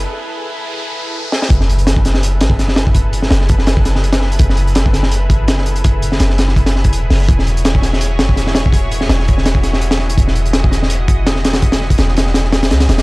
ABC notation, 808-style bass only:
X:1
M:4/4
L:1/8
Q:"Swing 16ths" 1/4=166
K:F#dor
V:1 name="808-style bass" clef=bass
z8 | F,,,4- F,,, G,,, F,,,2- | F,,,2 F,,,6 | F,,,4- F,,, G,,, F,,,2- |
F,,,2 F,,,4 E,,, F,,, | E,,,4- E,,, F,,, E,,,2- | E,,,2 E,,,6 | E,,,4- E,,, F,,, E,,,2- |
E,,,2 E,,,4 C,, E,,, |]